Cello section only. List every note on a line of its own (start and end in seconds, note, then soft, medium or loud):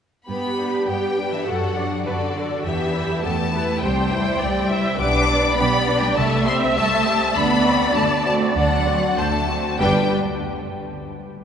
0.28 0.84 B3 medium
0.88 1.32 G3 soft
1.33 1.39 E3 soft
1.48 2.06 F#3 soft
2.07 2.66 D3 soft
2.66 3.23 E3 medium
3.24 3.81 A3 medium
3.83 4.99 G3 medium
5.00 5.57 D4 medium
5.59 6.02 B3 medium
6.03 6.17 G3 medium
6.18 6.47 A3 medium
6.47 6.77 C4 medium
6.77 7.35 A3 medium
7.36 7.95 B3 medium
7.96 8.04 A3 medium
8.26 8.56 A3 medium
8.56 9.16 F#3 medium
9.17 9.78 A3 medium
9.79 10.13 G3 medium